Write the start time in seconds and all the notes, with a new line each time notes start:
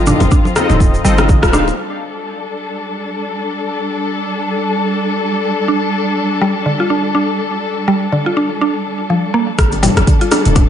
Already playing: G1 F3 C4 D#4 F4 A4 D#5
0.06 D4, mid tom, shaker
0.20 G1, low bongo, high conga, shaker
0.31 D4, kick, shaker
0.45 high conga, shaker
0.55 C4 D#4 F4 A4 D#5, cross-stick, high bongo, high conga, low conga, shaker
0.69 D1, mid tom, high bongo, high conga, shaker
0.80 kick, shaker
0.94 shaker
1.05 G1 G3 C4 D#4 F4 A4 D#5, shaker
1.18 cross-stick, low bongo, low conga, shaker
1.29 D3, kick, shaker
1.43 D1 F4, kick, cross-stick, shaker
1.53 C4 D4 D#4 F4 A4 F5, cross-stick, low conga, shaker
1.68 high bongo, shaker
1.78 G3 D4 A4
5.68 D4
6.41 G3
6.66 D3
6.80 F4
6.90 D4
7.15 D4
7.88 G3
8.12 D3
8.26 F4
8.37 D4
8.61 D4
9.10 F3
9.34 A#3
9.58 G1 G3 D4 A4, kick, cross-stick, closed hi-hat, shaker
9.72 closed hi-hat, low bongo, shaker
9.83 G3, mid tom, open hi-hat, high bongo, shaker
9.97 G1, cross-stick, closed hi-hat, low bongo, shaker
10.07 D3, kick, closed hi-hat, shaker
10.21 F4, closed hi-hat, shaker
10.31 D4, cross-stick, open hi-hat, high bongo, low bongo, shaker
10.45 D1, closed hi-hat, mid tom, shaker
10.55 D4, kick, closed hi-hat, low bongo, shaker